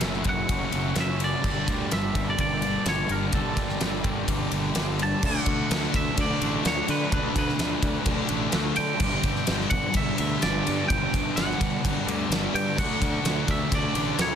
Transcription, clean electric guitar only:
0.00 0.06 F#5 loud
0.06 0.23 E5 loud
0.29 1.00 F#5 loud
1.00 1.23 E5 medium
1.24 1.93 D5 medium
1.93 2.29 E5 loud
2.30 2.39 D5 medium
2.40 2.88 D5 loud
2.89 3.12 C#5 medium
3.12 3.34 A#4 medium
3.34 4.72 A4 medium
5.03 5.26 A5 loud
5.26 5.96 F#5 loud
5.96 6.20 E5 loud
6.21 6.67 D5 loud
6.67 6.90 C#5 medium
6.90 7.12 B4 medium
7.13 7.37 B4 loud
7.39 8.83 B4 loud
8.77 9.70 G5 loud
9.70 9.95 F#5 loud
9.97 10.19 E5 loud
10.20 10.44 E5 medium
10.43 10.91 D5 medium
10.88 11.36 G5 loud
11.36 12.27 F#5 medium
12.55 12.79 G5 loud
12.79 13.50 F#5 loud
13.51 13.74 E5 loud
13.75 14.21 D5 loud
14.21 14.35 C#5 medium

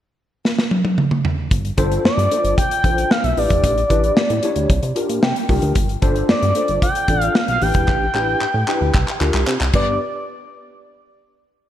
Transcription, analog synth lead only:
2.05 2.54 D5 medium
2.58 3.12 G5 loud
3.11 3.25 F5 loud
3.24 3.39 E5 medium
3.38 4.97 D5 medium
6.30 6.79 D5 medium
6.83 7.22 G5 loud
7.22 7.36 F5 loud
7.36 7.48 F5 loud
7.49 7.64 F5 medium
7.62 9.21 G5 loud
9.75 9.99 D5 medium

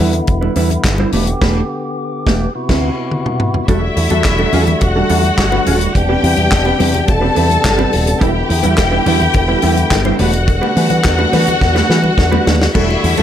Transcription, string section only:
3.69 4.80 E4 medium
3.69 4.80 E5 medium
4.82 5.93 F#4 medium
4.82 5.93 F#5 medium
5.95 7.06 G4 medium
5.95 7.06 G5 loud
7.08 8.20 A4 medium
7.08 8.19 A5 medium
8.21 10.16 G4 medium
8.21 10.16 G5 medium
10.20 12.71 F#4 medium
10.20 12.71 F#5 medium
12.75 13.23 E4 medium
12.75 13.23 E5 loud

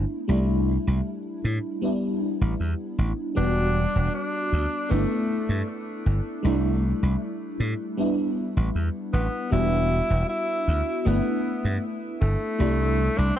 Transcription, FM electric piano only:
0.00 0.21 A3 medium
0.00 0.22 B3 medium
0.00 0.22 D4 medium
0.00 0.22 E4 medium
0.28 1.75 G3 medium
0.28 1.75 A3 medium
0.28 1.76 D4 medium
0.28 1.76 E4 medium
1.81 3.29 G3 medium
1.81 3.29 B3 medium
1.81 3.30 D4 medium
1.81 3.30 E4 medium
3.35 4.82 G3 medium
3.35 4.83 B3 medium
3.35 4.83 D4 medium
3.35 4.84 F#4 medium
4.89 6.37 A3 medium
4.89 6.37 B3 medium
4.89 6.38 D4 medium
4.89 6.38 E4 medium
6.43 7.90 G3 medium
6.43 7.91 A3 medium
6.43 7.91 D4 medium
6.43 7.92 E4 medium
7.97 9.44 G3 medium
7.97 9.45 B3 medium
7.97 9.45 D4 medium
7.97 9.46 E4 medium
9.51 10.98 G3 medium
9.51 10.98 B3 medium
9.51 10.99 D4 medium
9.51 11.00 F#4 medium
11.05 12.52 A3 medium
11.05 12.53 B3 medium
11.05 12.53 D4 medium
11.05 12.54 E4 medium
12.58 13.39 G3 medium
12.58 13.39 A3 medium
12.58 13.39 D4 medium
12.58 13.39 E4 medium

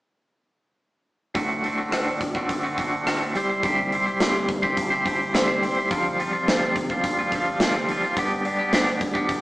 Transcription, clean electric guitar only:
1.35 1.90 D2 medium
1.35 1.90 A2 medium
1.35 1.63 D3 medium
1.35 1.64 A3 medium
1.35 1.65 C4 medium
1.35 1.65 F#4 medium
1.64 1.79 D3 medium
1.64 1.79 A3 medium
1.64 1.78 C4 medium
1.64 1.76 F#4 medium
1.78 1.91 D3 medium
1.78 1.92 A3 soft
1.78 1.92 C4 medium
1.78 1.92 F#4 medium
1.91 2.49 D2 medium
1.91 2.49 A2 medium
1.91 2.20 D3 medium
1.91 2.21 A3 medium
1.91 2.21 C4 medium
1.91 2.20 F#4 medium
2.21 muted clean electric guitar stroke soft
2.35 2.64 D3 soft
2.35 2.65 A3 medium
2.35 2.64 C4 medium
2.35 2.62 F#4 medium
2.63 2.77 D3 medium
2.63 2.79 A3 medium
2.63 2.79 C4 medium
2.63 2.79 F#4 medium
2.78 3.06 D3 medium
2.78 3.07 A3 medium
2.78 3.08 C4 medium
2.78 3.07 F#4 medium
3.06 3.33 D2 medium
3.06 3.33 A2 medium
3.06 3.22 D3 medium
3.06 3.22 A3 medium
3.06 3.21 C4 medium
3.06 3.20 F#4 medium
3.21 3.35 D3 soft
3.21 3.36 A3 medium
3.21 3.35 C4 medium
3.21 3.33 F#4 medium
3.35 3.62 C3 medium
3.35 3.63 G3 medium
3.35 3.51 C4 medium
3.35 3.50 E4 medium
3.35 3.49 G4 medium
3.35 3.49 C5 loud
3.49 3.64 C4 medium
3.49 3.63 E4 medium
3.49 3.65 G4 medium
3.49 3.65 C5 medium
3.63 4.19 C3 medium
3.63 4.21 G3 medium
3.63 3.92 C4 medium
3.63 3.92 E4 medium
3.63 3.94 G4 medium
3.63 3.95 C5 medium
3.92 4.08 C4 medium
3.92 4.06 E4 medium
3.92 4.06 G4 medium
3.92 4.05 C5 medium
4.06 4.22 C4 medium
4.06 4.21 E4 medium
4.06 4.22 G4 medium
4.06 4.23 C5 medium
4.20 4.77 C3 medium
4.20 5.34 G3 medium
4.20 4.49 C4 medium
4.20 4.48 E4 medium
4.20 4.49 G4 medium
4.20 4.50 C5 medium
4.49 muted clean electric guitar stroke soft
4.62 4.92 C4 medium
4.62 4.91 E4 medium
4.62 4.91 G4 medium
4.62 4.89 C5 medium
4.90 5.04 C4 medium
4.90 5.05 E4 medium
4.90 5.06 G4 medium
4.90 5.06 C5 medium
5.05 5.33 C4 medium
5.05 5.34 E4 medium
5.05 5.35 G4 medium
5.05 5.35 C5 medium
5.33 5.76 C3 medium
5.33 5.90 G3 medium
5.33 5.49 C4 medium
5.33 5.48 E4 medium
5.33 5.48 G4 medium
5.33 5.46 C5 medium
5.47 5.61 C4 medium
5.47 5.62 E4 medium
5.47 5.63 G4 medium
5.47 5.63 C5 medium
5.62 5.77 C4 medium
5.62 5.77 E4 medium
5.62 5.77 G4 medium
5.62 5.75 C5 medium
5.76 5.90 C4 soft
5.76 5.89 E4 medium
5.76 5.92 G4 medium
5.76 5.88 C5 medium
5.90 6.46 F2 medium
5.90 6.47 C3 medium
5.90 6.17 F3 medium
5.90 6.19 G3 medium
5.90 6.19 C4 medium
5.90 6.20 F4 medium
6.18 6.33 F3 medium
6.18 6.34 G3 medium
6.18 6.32 C4 medium
6.18 6.32 F4 medium
6.33 6.48 F3 medium
6.33 6.49 G3 medium
6.33 6.48 C4 medium
6.33 6.49 F4 medium
6.47 7.04 F2 medium
6.47 7.04 C3 medium
6.47 6.75 F3 medium
6.47 6.76 G3 medium
6.47 6.76 C4 medium
6.47 6.76 F4 medium
6.76 muted clean electric guitar stroke soft
6.91 7.20 F3 soft
6.91 7.19 G3 medium
6.91 7.19 C4 medium
6.91 7.18 F4 medium
7.19 7.32 F3 medium
7.19 7.33 G3 medium
7.19 7.34 C4 medium
7.19 7.35 F4 medium
7.33 7.62 F3 medium
7.33 7.62 G3 medium
7.33 7.63 C4 medium
7.33 7.63 F4 medium
7.62 8.03 F2 medium
7.62 8.03 C3 medium
7.62 7.76 F3 medium
7.62 7.75 G3 medium
7.62 7.75 C4 medium
7.62 7.74 F4 medium
7.75 7.87 F3 medium
7.75 7.88 G3 medium
7.75 7.89 C4 medium
7.75 7.90 F4 medium
7.89 8.05 F3 medium
7.89 8.04 G3 medium
7.89 8.03 C4 medium
7.89 8.03 F4 medium
8.04 8.17 F3 medium
8.04 8.16 G3 medium
8.04 8.16 C4 medium
8.04 8.15 F4 medium
8.17 8.71 G2 medium
8.17 8.71 D3 medium
8.17 8.43 G3 medium
8.17 8.44 B3 medium
8.17 8.45 D4 medium
8.17 8.46 G4 medium
8.45 8.60 G3 medium
8.45 8.59 B3 medium
8.45 8.58 D4 medium
8.45 8.57 G4 medium
8.59 8.72 G3 medium
8.59 8.72 B3 medium
8.59 8.72 D4 medium
8.59 8.73 G4 medium
8.72 9.29 G2 medium
8.72 9.29 D3 medium
8.72 8.99 G3 medium
8.72 8.99 B3 medium
8.72 9.00 D4 medium
8.72 9.00 G4 medium
9.00 muted clean electric guitar stroke soft
9.14 9.41 G3 medium
9.14 9.41 B3 medium
9.14 9.41 D4 medium
9.14 9.41 G4 medium

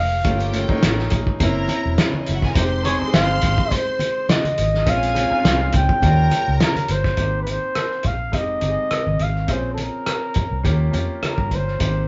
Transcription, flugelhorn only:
0.00 0.54 F5 medium
2.56 2.83 C5 medium
2.85 2.98 C#5 medium
3.14 3.74 F5 medium
3.73 4.31 C5 medium
4.30 4.91 D#5 medium
4.89 5.75 F5 loud
5.76 6.57 G5 loud
6.64 6.93 A#4 medium
6.92 7.41 C5 loud
7.42 7.51 B4 medium
7.50 8.08 C5 medium
8.06 8.36 F5 medium
8.35 9.24 D#5 medium
9.22 9.52 F5 medium
9.51 9.72 C5 medium
9.74 9.83 A4 medium
9.81 10.97 A#4 medium
11.27 11.57 A#4 medium
11.55 12.08 C5 medium

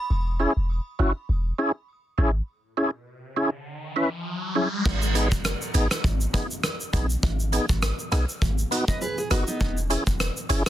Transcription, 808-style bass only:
0.10 0.46 E1 loud
0.57 0.80 E1 medium
0.99 1.12 F#1 medium
1.29 1.52 E1 loud
2.18 2.41 G#1 loud
4.86 5.33 G#1 loud
5.32 5.55 F#1 medium
5.75 5.88 G#1 medium
6.04 6.27 G#1 loud
6.93 7.17 A#1 medium
7.23 7.59 G#1 loud
7.69 7.93 G#1 loud
8.12 8.25 B1 medium
8.42 8.65 G#1 loud
9.31 9.44 F#1 medium
9.61 9.97 E1 loud
10.07 10.30 E1 medium
10.50 10.63 F#1 medium

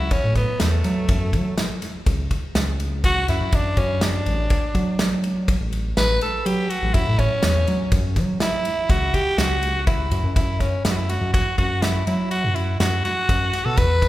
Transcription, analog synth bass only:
0.00 0.10 C#2 medium
0.24 0.46 A2 medium
0.61 0.82 E2 loud
0.84 1.06 F#3 medium
1.09 1.35 F#2 loud
1.33 1.55 F#3 medium
2.06 2.28 C#2 medium
2.55 3.24 C#2 medium
3.29 3.40 F#2 medium
3.41 3.52 F#2 medium
3.53 3.75 F#2 medium
3.77 4.22 F#2 loud
4.26 4.48 A1 loud
4.75 5.56 F#3 medium
5.60 5.93 A1 medium
5.97 6.19 A1 medium
6.46 6.68 F#3 medium
6.82 6.93 A1 loud
6.95 7.06 F#2 loud
7.07 7.29 A2 medium
7.43 7.65 E2 loud
7.68 7.90 F#3 loud
7.92 8.18 F#2 loud
8.16 8.38 F#3 medium
8.89 9.12 C#2 medium
9.38 10.07 C#2 medium
10.11 10.23 F#2 medium
10.24 10.35 F#2 medium
10.36 10.81 F#2 medium
10.85 11.18 F#2 loud
11.21 11.43 F#2 loud
11.58 12.03 F#2 medium
12.07 12.45 F#3 medium
12.44 12.77 F#2 medium
12.80 13.02 F#2 medium
13.29 13.51 F#2 medium
13.66 13.77 B2 loud
13.78 14.08 E2 medium

